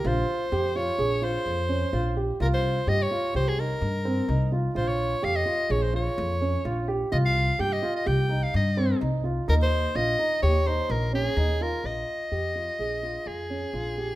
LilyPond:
<<
  \new Staff \with { instrumentName = "Soprano saxophone" } { \time 5/4 \key bes \dorian \tempo 4 = 127 c''4. des''4 c''2 r8 | bes'16 c''8. ees''16 des''8. c''16 aes'16 bes'2 r8 | c''16 des''8. f''16 ees''8. des''16 c''16 des''2 r8 | ees''16 f''8. g''16 ees''8 ees''16 g''8. f''16 ees''4 r4 |
bes'16 c''8. ees''4 des''8 c''8 bes'8 aes'4 bes'8 | ees''2. aes'2 | }
  \new Staff \with { instrumentName = "Grand piano" } { \time 5/4 \key bes \dorian f'4 g'8 f'8 aes'8 f'4 des'8 f'8 g'8 | f'4 g'8 f'8 g'8 ees'4 c'8 ees'8 f'8 | f'4 g'8 f'8 aes'8 f'4 des'8 f'8 g'8 | f'4 g'8 f'8 g'8 ees'4 c'8 ees'8 f'8 |
ees'4 f'8 ees'8 g'8 ees'4 des'8 ees'8 f'8 | r4 g'8 f'8 aes'8 f'4 des'8 f'8 g'8 | }
  \new Staff \with { instrumentName = "Upright bass" } { \clef bass \time 5/4 \key bes \dorian bes,,8 r8 f,4 bes,,4 f,4 bes,,4 | c,4 g,8 r8 c,4 g,4 c,4 | bes,,4 f,8 r8 bes,,4 f,4 bes,,4 | c,4 g,8 r8 c,4 g,4 c,4 |
ees,4 bes,,8 r8 ees,4 bes,,4 ees,4 | bes,,8 r8 f,4 bes,,4 f,4 bes,,4 | }
>>